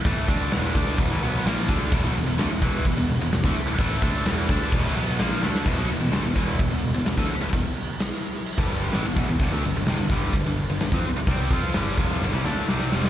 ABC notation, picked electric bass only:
X:1
M:4/4
L:1/16
Q:1/4=128
K:Ephr
V:1 name="Picked electric bass" clef=bass
A,,,2 D,,2 E,,,2 D,,2 E,,, A,,, B,,,2 ^A,,,2 D,,2 | E,,, B,,, E,,, E,,, D,, z E,,,2 E,,, E,,,2 E,,, E,,, D,, z2 | A,,,2 D,,2 E,,,2 D,,2 E,,, A,,, B,,,2 ^A,,,2 D,,2 | E,,, B,,, E,,, E,,, D,, E,,, E,,,2 E,,, E,,,2 E,,, E,,, D,, z2 |
E,,, z8 G,,,3 A,,, E,,, E,,, E,,, | G,,, D,, G,,, G,,, F,,, G,,, G,,,2 G,,, G,,,2 G,,, G,,, F,, z2 | C,,2 F,,2 G,,,2 F,,,2 G,,, C,, D,,2 C,,2 F,,,2 |]